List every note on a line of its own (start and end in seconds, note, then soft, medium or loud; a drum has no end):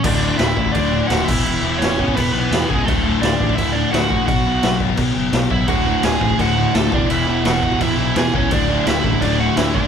0.03 0.30 D1 medium
0.03 0.20 D2 loud
0.03 0.21 A2 loud
0.03 0.21 D3 loud
0.03 0.37 D4 medium
0.03 0.40 D5 loud
0.03 kick loud
0.03 crash loud
0.03 crash medium
0.22 0.38 D2 medium
0.22 0.38 A2 loud
0.22 0.39 D3 medium
0.38 0.52 D1 medium
0.38 0.56 D2 medium
0.38 0.56 A2 loud
0.38 0.57 D3 loud
0.38 0.72 E4 medium
0.38 0.75 E5 loud
0.38 snare loud
0.38 crash medium
0.57 0.70 A1 medium
0.57 0.73 D2 medium
0.57 0.73 A2 medium
0.57 0.74 D3 loud
0.57 kick medium
0.66 kick medium
0.72 1.00 D1 medium
0.72 0.90 D2 medium
0.72 0.91 A2 medium
0.72 0.91 D3 loud
0.72 1.07 D4 medium
0.72 1.06 D5 loud
0.72 kick loud
0.72 crash medium
0.92 1.08 D2 medium
0.92 1.09 A2 medium
0.92 1.09 D3 medium
1.07 1.23 D#1 medium
1.07 1.26 D2 loud
1.07 1.26 A2 loud
1.07 1.27 D3 loud
1.07 1.26 F#4 medium
1.07 1.24 F#5 loud
1.07 snare loud
1.07 crash medium
1.25 1.41 E1 medium
1.25 1.44 E2 medium
1.25 1.44 B2 loud
1.25 1.45 E3 loud
1.25 1.77 E4 medium
1.25 1.81 E5 loud
1.25 kick loud
1.25 crash loud
1.45 1.57 E1 loud
1.45 1.62 E2 loud
1.45 1.62 B2 loud
1.45 1.63 E3 loud
1.45 crash medium
1.63 1.75 E1 medium
1.63 1.79 E2 medium
1.63 1.79 B2 medium
1.63 1.79 E3 loud
1.78 2.05 E1 loud
1.78 1.97 E2 medium
1.78 1.97 B2 loud
1.78 1.98 E3 loud
1.78 2.14 C#4 medium
1.78 2.15 C#5 loud
1.78 crash medium
1.82 snare loud
1.98 2.15 E2 medium
1.98 2.15 B2 medium
1.98 2.16 E3 medium
1.98 kick medium
2.08 kick medium
2.15 2.29 E1 medium
2.15 2.32 E2 medium
2.15 2.33 B2 medium
2.15 2.33 E3 loud
2.15 2.33 B3 medium
2.15 2.32 B4 medium
2.15 kick loud
2.15 crash medium
2.33 2.46 B1 medium
2.33 2.49 E2 medium
2.33 2.50 B2 medium
2.33 2.50 E3 medium
2.33 2.68 B3 medium
2.33 2.69 B4 loud
2.50 2.67 E2 loud
2.50 2.64 E2 medium
2.50 2.67 B2 loud
2.50 2.68 E3 loud
2.50 snare loud
2.50 crash medium
2.68 2.82 C#2 medium
2.68 2.85 E2 medium
2.68 2.85 B2 medium
2.68 2.85 E3 loud
2.68 2.86 G#3 medium
2.68 2.85 G#4 medium
2.68 kick medium
2.85 3.13 D1 loud
2.85 3.03 D2 loud
2.85 3.04 A2 loud
2.85 3.04 D3 loud
2.85 3.20 A3 medium
2.85 3.21 A4 loud
2.85 kick loud
2.85 crash medium
3.04 3.20 D2 medium
3.04 3.21 A2 medium
3.04 3.21 D3 loud
3.21 3.34 D1 loud
3.21 3.38 D2 loud
3.21 3.39 A2 loud
3.21 3.40 D3 loud
3.21 3.55 D4 medium
3.21 3.58 D5 medium
3.21 snare loud
3.21 crash medium
3.40 3.53 A1 medium
3.40 3.55 D2 medium
3.40 3.56 A2 loud
3.40 3.57 D3 loud
3.40 kick medium
3.49 kick medium
3.55 3.83 D1 loud
3.55 3.74 D2 medium
3.55 3.74 A2 loud
3.55 3.75 D3 medium
3.55 3.74 E4 medium
3.55 3.74 E5 loud
3.55 kick loud
3.55 crash medium
3.72 3.91 D2 medium
3.72 3.92 A2 medium
3.72 3.91 D4 medium
3.72 3.91 D5 medium
3.76 3.92 D3 loud
3.91 4.09 D2 loud
3.91 4.05 D2 medium
3.91 4.10 A2 loud
3.91 4.10 D3 loud
3.91 4.25 F#4 medium
3.91 4.26 F#5 loud
3.91 snare loud
3.91 crash medium
4.10 4.28 A#1 medium
4.10 4.27 D2 medium
4.10 4.27 A2 medium
4.10 4.27 D3 medium
4.10 kick medium
4.27 4.41 B1 loud
4.27 4.45 B2 medium
4.27 4.46 F#3 loud
4.27 4.46 B3 loud
4.27 4.77 F#4 medium
4.27 4.76 F#5 medium
4.27 kick loud
4.27 crash medium
4.46 4.58 B1 medium
4.46 4.62 B2 medium
4.46 4.63 F#3 medium
4.46 4.63 B3 loud
4.63 4.88 B1 loud
4.63 4.79 B2 loud
4.63 4.79 F#3 loud
4.63 4.80 B3 loud
4.63 snare loud
4.63 crash medium
4.80 4.96 B2 medium
4.80 4.97 F#3 loud
4.80 4.97 B3 medium
4.80 kick medium
4.89 kick medium
4.97 5.11 B1 loud
4.97 5.13 B2 medium
4.97 5.13 F#3 loud
4.97 5.14 B3 medium
4.97 kick loud
4.97 crash medium
5.14 5.29 F#1 medium
5.14 5.30 B2 medium
5.14 5.31 F#3 medium
5.14 5.31 B3 medium
5.31 5.46 B1 medium
5.31 5.48 B2 loud
5.31 5.49 F#3 loud
5.31 5.49 B3 loud
5.31 snare loud
5.31 crash medium
5.49 5.63 B1 medium
5.49 5.66 B2 medium
5.49 5.67 F#3 medium
5.49 5.67 B3 loud
5.49 5.68 E4 medium
5.49 5.67 E5 medium
5.49 kick medium
5.67 5.94 D1 medium
5.67 5.84 D2 medium
5.67 5.85 A2 loud
5.67 5.86 D3 loud
5.67 6.01 F#4 medium
5.67 6.01 F#5 medium
5.67 kick loud
5.67 crash medium
5.86 6.02 D2 medium
5.86 6.03 A2 medium
5.86 6.03 D3 loud
6.03 6.16 D1 loud
6.03 6.20 D2 loud
6.03 6.21 A2 medium
6.03 6.22 D3 loud
6.03 6.37 G#4 medium
6.03 6.40 G#5 medium
6.03 snare loud
6.03 crash medium
6.21 6.34 A1 medium
6.21 6.38 D2 medium
6.21 6.38 A2 medium
6.21 6.39 D3 loud
6.21 kick medium
6.30 kick medium
6.39 6.65 D1 loud
6.39 6.56 D2 medium
6.39 6.57 A2 medium
6.39 6.57 D3 loud
6.39 6.73 F#4 medium
6.39 6.76 F#5 medium
6.39 kick loud
6.39 crash medium
6.57 6.73 D2 medium
6.57 6.74 A2 medium
6.57 6.75 D3 medium
6.74 6.91 D2 loud
6.74 6.87 D2 medium
6.74 6.91 A2 loud
6.74 6.92 D3 loud
6.74 6.91 A4 medium
6.74 6.93 A5 medium
6.74 snare loud
6.74 crash medium
6.92 7.05 E1 medium
6.92 7.08 E2 loud
6.92 7.09 B2 medium
6.92 7.09 E3 loud
6.92 7.09 D4 medium
6.92 7.11 D5 medium
6.92 kick loud
7.10 7.23 E1 loud
7.10 7.26 E2 loud
7.10 7.27 B2 loud
7.10 7.28 E3 loud
7.10 7.43 E4 medium
7.10 7.43 E5 loud
7.10 crash medium
7.27 7.40 E1 loud
7.27 7.44 E2 medium
7.27 7.45 B2 medium
7.27 7.46 E3 loud
7.45 7.71 E1 loud
7.45 7.61 E2 medium
7.45 7.62 B2 loud
7.45 7.62 E3 loud
7.45 7.78 F#4 medium
7.45 7.82 F#5 loud
7.45 snare loud
7.45 crash medium
7.62 7.79 E2 medium
7.62 7.79 B2 loud
7.62 7.80 E3 loud
7.62 kick medium
7.72 kick medium
7.80 7.94 E1 medium
7.80 7.96 E2 medium
7.80 7.97 B2 medium
7.80 7.97 E3 loud
7.80 8.14 E4 medium
7.80 8.18 E5 medium
7.80 kick loud
7.80 crash medium
7.97 8.11 B1 medium
7.97 8.14 E2 medium
7.97 8.15 B2 medium
7.97 8.15 E3 medium
8.15 8.28 E2 medium
8.15 8.32 E2 loud
8.15 8.33 B2 loud
8.15 8.33 E3 loud
8.15 8.32 G#4 medium
8.15 8.33 G#5 loud
8.15 snare loud
8.15 crash medium
8.34 8.46 C#2 medium
8.34 8.50 E2 medium
8.34 8.50 B2 medium
8.34 8.50 E3 loud
8.34 8.50 C#4 medium
8.34 8.52 C#5 medium
8.34 kick medium
8.50 8.77 D1 medium
8.50 8.68 D2 loud
8.50 8.68 A2 loud
8.50 8.69 D3 loud
8.50 8.85 D4 medium
8.50 8.88 D5 loud
8.50 kick loud
8.50 crash medium
8.69 8.84 D2 medium
8.69 8.85 A2 loud
8.69 8.86 D3 loud
8.86 8.99 D1 medium
8.86 9.02 D2 loud
8.86 9.03 A2 loud
8.86 9.03 D3 loud
8.86 9.19 E4 medium
8.86 9.20 E5 loud
8.86 snare loud
8.86 crash medium
9.03 9.17 A1 medium
9.03 9.20 D2 medium
9.03 9.20 A2 loud
9.03 9.21 D3 medium
9.03 kick medium
9.13 kick medium
9.21 9.48 D1 medium
9.21 9.37 D2 medium
9.21 9.38 A2 medium
9.21 9.38 D3 loud
9.21 9.38 D4 medium
9.21 9.40 D5 medium
9.21 kick loud
9.21 crash medium
9.38 9.56 D2 medium
9.38 9.57 A2 medium
9.38 9.57 D3 loud
9.38 9.56 F#4 medium
9.38 9.56 F#5 medium
9.57 9.73 D2 loud
9.57 9.70 D2 loud
9.57 9.74 A2 loud
9.57 9.75 D3 loud
9.57 9.73 E4 medium
9.57 9.75 E5 medium
9.57 snare loud
9.57 crash medium
9.74 9.87 A#1 medium
9.74 9.88 D2 medium
9.74 9.88 A2 loud
9.74 9.88 D3 medium
9.74 9.88 D4 medium
9.74 9.88 D5 medium
9.74 kick medium